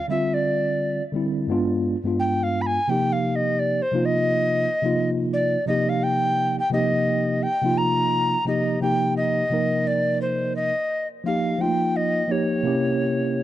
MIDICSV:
0, 0, Header, 1, 3, 480
1, 0, Start_track
1, 0, Key_signature, -3, "minor"
1, 0, Tempo, 697674
1, 63, Time_signature, 4, 2, 24, 8
1, 9241, End_track
2, 0, Start_track
2, 0, Title_t, "Recorder"
2, 0, Program_c, 0, 74
2, 69, Note_on_c, 0, 76, 96
2, 232, Note_on_c, 0, 74, 75
2, 242, Note_off_c, 0, 76, 0
2, 707, Note_off_c, 0, 74, 0
2, 1510, Note_on_c, 0, 79, 88
2, 1673, Note_on_c, 0, 77, 84
2, 1684, Note_off_c, 0, 79, 0
2, 1798, Note_on_c, 0, 83, 67
2, 1809, Note_off_c, 0, 77, 0
2, 1833, Note_on_c, 0, 80, 89
2, 1843, Note_off_c, 0, 83, 0
2, 1992, Note_on_c, 0, 79, 94
2, 2002, Note_off_c, 0, 80, 0
2, 2150, Note_on_c, 0, 77, 84
2, 2160, Note_off_c, 0, 79, 0
2, 2309, Note_on_c, 0, 75, 97
2, 2319, Note_off_c, 0, 77, 0
2, 2471, Note_on_c, 0, 74, 98
2, 2481, Note_off_c, 0, 75, 0
2, 2628, Note_on_c, 0, 72, 89
2, 2639, Note_off_c, 0, 74, 0
2, 2788, Note_on_c, 0, 75, 104
2, 2799, Note_off_c, 0, 72, 0
2, 3505, Note_off_c, 0, 75, 0
2, 3669, Note_on_c, 0, 74, 94
2, 3889, Note_off_c, 0, 74, 0
2, 3904, Note_on_c, 0, 75, 95
2, 4053, Note_on_c, 0, 77, 90
2, 4064, Note_off_c, 0, 75, 0
2, 4150, Note_on_c, 0, 79, 117
2, 4161, Note_off_c, 0, 77, 0
2, 4531, Note_off_c, 0, 79, 0
2, 4538, Note_on_c, 0, 79, 102
2, 4622, Note_off_c, 0, 79, 0
2, 4631, Note_on_c, 0, 75, 104
2, 5111, Note_on_c, 0, 79, 104
2, 5121, Note_off_c, 0, 75, 0
2, 5350, Note_on_c, 0, 82, 106
2, 5360, Note_off_c, 0, 79, 0
2, 5826, Note_off_c, 0, 82, 0
2, 5832, Note_on_c, 0, 75, 104
2, 6051, Note_off_c, 0, 75, 0
2, 6068, Note_on_c, 0, 79, 111
2, 6289, Note_off_c, 0, 79, 0
2, 6308, Note_on_c, 0, 75, 108
2, 6791, Note_on_c, 0, 74, 105
2, 6801, Note_off_c, 0, 75, 0
2, 7025, Note_off_c, 0, 74, 0
2, 7029, Note_on_c, 0, 72, 75
2, 7249, Note_off_c, 0, 72, 0
2, 7265, Note_on_c, 0, 75, 97
2, 7621, Note_off_c, 0, 75, 0
2, 7747, Note_on_c, 0, 77, 91
2, 7987, Note_on_c, 0, 79, 98
2, 7998, Note_off_c, 0, 77, 0
2, 8230, Note_on_c, 0, 75, 104
2, 8240, Note_off_c, 0, 79, 0
2, 8471, Note_on_c, 0, 73, 85
2, 8482, Note_off_c, 0, 75, 0
2, 9241, Note_off_c, 0, 73, 0
2, 9241, End_track
3, 0, Start_track
3, 0, Title_t, "Tine electric piano"
3, 0, Program_c, 1, 4
3, 57, Note_on_c, 1, 50, 71
3, 66, Note_on_c, 1, 55, 65
3, 74, Note_on_c, 1, 60, 69
3, 83, Note_on_c, 1, 65, 77
3, 689, Note_off_c, 1, 50, 0
3, 693, Note_off_c, 1, 55, 0
3, 697, Note_off_c, 1, 60, 0
3, 702, Note_off_c, 1, 65, 0
3, 771, Note_on_c, 1, 50, 77
3, 783, Note_on_c, 1, 55, 75
3, 791, Note_on_c, 1, 60, 67
3, 800, Note_on_c, 1, 64, 74
3, 1015, Note_on_c, 1, 43, 83
3, 1017, Note_off_c, 1, 50, 0
3, 1023, Note_off_c, 1, 55, 0
3, 1023, Note_on_c, 1, 56, 84
3, 1027, Note_off_c, 1, 60, 0
3, 1030, Note_on_c, 1, 59, 92
3, 1031, Note_off_c, 1, 64, 0
3, 1038, Note_on_c, 1, 62, 86
3, 1045, Note_on_c, 1, 65, 100
3, 1335, Note_off_c, 1, 43, 0
3, 1339, Note_off_c, 1, 56, 0
3, 1342, Note_off_c, 1, 59, 0
3, 1346, Note_off_c, 1, 62, 0
3, 1349, Note_off_c, 1, 65, 0
3, 1401, Note_on_c, 1, 43, 80
3, 1406, Note_on_c, 1, 56, 65
3, 1412, Note_on_c, 1, 59, 70
3, 1419, Note_on_c, 1, 62, 65
3, 1426, Note_on_c, 1, 65, 79
3, 1904, Note_off_c, 1, 43, 0
3, 1907, Note_off_c, 1, 56, 0
3, 1909, Note_off_c, 1, 59, 0
3, 1913, Note_off_c, 1, 62, 0
3, 1917, Note_off_c, 1, 65, 0
3, 1979, Note_on_c, 1, 48, 77
3, 1986, Note_on_c, 1, 53, 67
3, 1990, Note_on_c, 1, 58, 69
3, 1999, Note_on_c, 1, 63, 64
3, 2004, Note_on_c, 1, 67, 85
3, 2610, Note_off_c, 1, 48, 0
3, 2613, Note_off_c, 1, 53, 0
3, 2616, Note_off_c, 1, 58, 0
3, 2620, Note_off_c, 1, 63, 0
3, 2623, Note_off_c, 1, 67, 0
3, 2693, Note_on_c, 1, 48, 78
3, 2701, Note_on_c, 1, 53, 71
3, 2707, Note_on_c, 1, 58, 68
3, 2714, Note_on_c, 1, 63, 69
3, 2721, Note_on_c, 1, 65, 87
3, 3208, Note_off_c, 1, 48, 0
3, 3212, Note_off_c, 1, 53, 0
3, 3215, Note_off_c, 1, 58, 0
3, 3218, Note_off_c, 1, 63, 0
3, 3222, Note_off_c, 1, 65, 0
3, 3317, Note_on_c, 1, 48, 78
3, 3324, Note_on_c, 1, 53, 66
3, 3331, Note_on_c, 1, 58, 69
3, 3336, Note_on_c, 1, 63, 67
3, 3343, Note_on_c, 1, 65, 79
3, 3822, Note_off_c, 1, 48, 0
3, 3825, Note_off_c, 1, 53, 0
3, 3829, Note_off_c, 1, 58, 0
3, 3831, Note_off_c, 1, 63, 0
3, 3835, Note_off_c, 1, 65, 0
3, 3893, Note_on_c, 1, 48, 77
3, 3900, Note_on_c, 1, 53, 68
3, 3909, Note_on_c, 1, 58, 69
3, 3916, Note_on_c, 1, 63, 69
3, 3922, Note_on_c, 1, 67, 80
3, 4527, Note_off_c, 1, 48, 0
3, 4530, Note_off_c, 1, 53, 0
3, 4535, Note_off_c, 1, 58, 0
3, 4538, Note_off_c, 1, 63, 0
3, 4542, Note_off_c, 1, 67, 0
3, 4610, Note_on_c, 1, 48, 83
3, 4617, Note_on_c, 1, 53, 78
3, 4624, Note_on_c, 1, 58, 78
3, 4633, Note_on_c, 1, 63, 70
3, 4637, Note_on_c, 1, 67, 88
3, 5127, Note_off_c, 1, 48, 0
3, 5130, Note_off_c, 1, 53, 0
3, 5133, Note_off_c, 1, 58, 0
3, 5138, Note_off_c, 1, 63, 0
3, 5140, Note_off_c, 1, 67, 0
3, 5241, Note_on_c, 1, 48, 81
3, 5247, Note_on_c, 1, 53, 71
3, 5254, Note_on_c, 1, 58, 67
3, 5260, Note_on_c, 1, 63, 69
3, 5268, Note_on_c, 1, 65, 88
3, 5744, Note_off_c, 1, 48, 0
3, 5747, Note_off_c, 1, 53, 0
3, 5750, Note_off_c, 1, 58, 0
3, 5753, Note_off_c, 1, 63, 0
3, 5757, Note_off_c, 1, 65, 0
3, 5814, Note_on_c, 1, 48, 69
3, 5818, Note_on_c, 1, 53, 69
3, 5826, Note_on_c, 1, 58, 61
3, 5831, Note_on_c, 1, 63, 66
3, 5838, Note_on_c, 1, 67, 85
3, 6028, Note_off_c, 1, 48, 0
3, 6030, Note_off_c, 1, 53, 0
3, 6034, Note_off_c, 1, 58, 0
3, 6037, Note_off_c, 1, 63, 0
3, 6040, Note_off_c, 1, 67, 0
3, 6055, Note_on_c, 1, 48, 64
3, 6062, Note_on_c, 1, 53, 66
3, 6069, Note_on_c, 1, 58, 67
3, 6074, Note_on_c, 1, 63, 67
3, 6082, Note_on_c, 1, 67, 74
3, 6478, Note_off_c, 1, 48, 0
3, 6482, Note_off_c, 1, 53, 0
3, 6485, Note_off_c, 1, 58, 0
3, 6488, Note_off_c, 1, 63, 0
3, 6492, Note_off_c, 1, 67, 0
3, 6534, Note_on_c, 1, 48, 67
3, 6541, Note_on_c, 1, 53, 69
3, 6547, Note_on_c, 1, 58, 68
3, 6555, Note_on_c, 1, 63, 65
3, 6561, Note_on_c, 1, 70, 71
3, 7364, Note_off_c, 1, 48, 0
3, 7367, Note_off_c, 1, 53, 0
3, 7371, Note_off_c, 1, 58, 0
3, 7375, Note_off_c, 1, 63, 0
3, 7377, Note_off_c, 1, 70, 0
3, 7734, Note_on_c, 1, 53, 75
3, 7743, Note_on_c, 1, 58, 65
3, 7752, Note_on_c, 1, 63, 66
3, 7761, Note_on_c, 1, 67, 72
3, 7948, Note_off_c, 1, 53, 0
3, 7953, Note_off_c, 1, 58, 0
3, 7957, Note_off_c, 1, 63, 0
3, 7962, Note_off_c, 1, 67, 0
3, 7970, Note_on_c, 1, 53, 76
3, 7978, Note_on_c, 1, 57, 54
3, 7987, Note_on_c, 1, 63, 66
3, 7994, Note_on_c, 1, 65, 82
3, 8024, Note_on_c, 1, 58, 67
3, 8034, Note_off_c, 1, 57, 0
3, 8396, Note_off_c, 1, 53, 0
3, 8404, Note_off_c, 1, 63, 0
3, 8408, Note_off_c, 1, 65, 0
3, 8423, Note_off_c, 1, 58, 0
3, 8446, Note_on_c, 1, 53, 71
3, 8454, Note_on_c, 1, 58, 69
3, 8465, Note_on_c, 1, 63, 66
3, 8473, Note_on_c, 1, 67, 84
3, 8688, Note_off_c, 1, 58, 0
3, 8690, Note_on_c, 1, 48, 80
3, 8694, Note_off_c, 1, 53, 0
3, 8697, Note_on_c, 1, 58, 69
3, 8704, Note_off_c, 1, 63, 0
3, 8705, Note_on_c, 1, 61, 73
3, 8708, Note_off_c, 1, 67, 0
3, 8710, Note_on_c, 1, 64, 72
3, 8718, Note_on_c, 1, 67, 84
3, 9241, Note_off_c, 1, 48, 0
3, 9241, Note_off_c, 1, 58, 0
3, 9241, Note_off_c, 1, 61, 0
3, 9241, Note_off_c, 1, 64, 0
3, 9241, Note_off_c, 1, 67, 0
3, 9241, End_track
0, 0, End_of_file